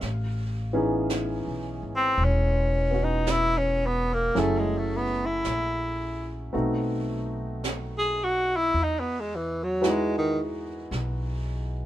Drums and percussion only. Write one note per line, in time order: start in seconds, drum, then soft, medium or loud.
0.01 brush sweep soft
0.01 snare soft
1.10 brush sweep soft
1.10 snare soft
1.10 hi-hat pedal soft
2.18 brush sweep soft
3.27 brush sweep soft
3.27 snare soft
3.27 hi-hat pedal medium
4.36 brush sweep soft
4.36 snare soft
5.44 brush sweep soft
5.44 snare soft
5.44 hi-hat pedal soft
6.53 brush sweep soft
7.64 brush sweep soft
7.64 snare soft
7.64 hi-hat pedal soft
8.74 brush sweep soft
9.83 brush sweep soft
9.83 snare soft
9.83 hi-hat pedal medium
10.92 brush sweep soft
10.92 snare soft